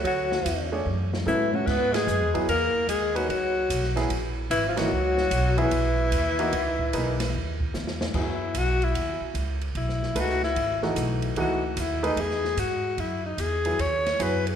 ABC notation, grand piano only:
X:1
M:4/4
L:1/8
Q:"Swing" 1/4=148
K:C#phr
V:1 name="Grand piano"
z3 [A,DGc] z2 [F,B,EA] z | z3 [F,B,EG] z3 [^A,^DGB] | z3 [F,B,EG] z3 [E,^A,^DF] | z3 [F,B,EG] z3 [E,^A,^DF] |
z2 [^A,^DGB] z4 z | [K:F#dor] [F,B,EG]4- [F,B,EG] z3 | z2 [A,DGB] z2 [E,A,DF]3 | [E,A,DF] z2 [A,DGB] z4 |
z3 [F,B,EG] z2 [F,B,EG] z |]